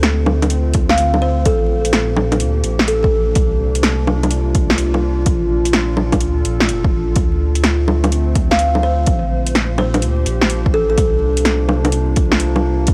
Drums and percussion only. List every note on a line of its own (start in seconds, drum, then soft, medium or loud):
0.03 snare loud
0.03 closed hi-hat medium
0.26 low bongo medium
0.42 closed hi-hat soft
0.42 low bongo medium
0.50 closed hi-hat medium
0.73 kick loud
0.73 closed hi-hat medium
0.89 snare loud
0.98 closed hi-hat medium
1.14 low bongo soft
1.45 kick loud
1.45 closed hi-hat medium
1.85 closed hi-hat medium
1.93 snare loud
1.93 closed hi-hat medium
2.17 low bongo medium
2.32 closed hi-hat soft
2.32 low bongo medium
2.40 closed hi-hat medium
2.64 closed hi-hat medium
2.79 snare loud
2.88 closed hi-hat medium
3.04 kick loud
3.35 kick loud
3.35 closed hi-hat medium
3.75 closed hi-hat medium
3.83 snare loud
3.83 closed hi-hat medium
4.07 low bongo medium
4.23 closed hi-hat soft
4.23 low bongo medium
4.31 closed hi-hat medium
4.55 kick loud
4.55 closed hi-hat medium
4.70 snare loud
4.78 closed hi-hat medium
4.94 low bongo soft
5.26 kick loud
5.26 closed hi-hat medium
5.65 closed hi-hat medium
5.73 snare loud
5.73 closed hi-hat medium
5.97 low bongo medium
6.12 kick medium
6.12 closed hi-hat soft
6.12 low bongo medium
6.20 closed hi-hat medium
6.45 closed hi-hat medium
6.60 snare loud
6.69 closed hi-hat medium
6.84 kick loud
7.16 kick loud
7.16 closed hi-hat medium
7.55 closed hi-hat soft
7.64 snare loud
7.64 closed hi-hat medium
7.88 low bongo medium
8.04 closed hi-hat soft
8.04 low bongo medium
8.12 closed hi-hat soft
8.35 kick loud
8.35 closed hi-hat soft
8.51 snare loud
8.59 closed hi-hat medium
8.75 low bongo soft
9.07 kick loud
9.07 closed hi-hat medium
9.46 closed hi-hat soft
9.55 snare medium
9.55 closed hi-hat soft
9.78 low bongo medium
9.94 closed hi-hat soft
9.94 low bongo medium
10.02 closed hi-hat soft
10.26 closed hi-hat soft
10.41 snare loud
10.50 closed hi-hat medium
10.66 kick loud
10.98 kick loud
10.98 closed hi-hat medium
11.37 closed hi-hat medium
11.45 snare medium
11.45 closed hi-hat medium
11.69 low bongo medium
11.85 closed hi-hat soft
11.85 low bongo medium
11.92 closed hi-hat medium
12.16 kick loud
12.16 closed hi-hat medium
12.32 snare loud
12.40 closed hi-hat medium
12.56 low bongo medium
12.87 kick loud
12.87 closed hi-hat medium